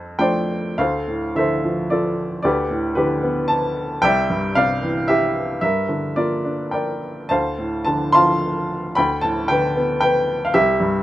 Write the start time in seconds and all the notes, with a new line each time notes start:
Already playing: F2 A4 C5
0.19 F3 A3 D4 C5 D5 G5
0.78 D2 A4 C5 F5
1.08 A2
1.35 D3 A4 C5 E5
1.64 F3
1.90 F4 A4 D5
2.42 D2 G4 B4 D5
2.70 A2
2.95 D3 G4 B4
3.23 B3
3.48 A5
4.02 C2 D5 E5 G5
4.30 G2
4.55 C3 D5 F5
4.82 E3
5.08 G4 E5
5.61 G2 A#4 E5
5.89 D3
6.16 A#3 F4 A#4 D5
6.44 D4
6.71 A#4 D5 G5
7.29 D2 C5 F5 A5
7.59 A2
7.85 D3 A5
8.12 F3 F5 A5 C6
8.95 D2 G5 B5
9.21 A2 A5
9.48 D3 B4 G5
9.77 B3
10.01 B4 G5
10.45 F5
10.54 C2 G4 E5
10.80 G2